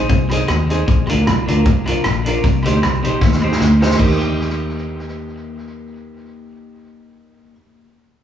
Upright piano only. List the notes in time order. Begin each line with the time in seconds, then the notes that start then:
0.31 D#4 G#4 C5
0.70 D#4 G#4 C5
1.09 D4 F4 A#4
1.48 D4 F4 A#4
1.88 D4 F4 A#4
2.26 D4 F4 A#4
2.65 D#4 G4 C5
3.04 D#4 G4 C5
3.43 D#4 G4 C5
3.81 D#4 G4 C5
3.99 D#4 G4 A#4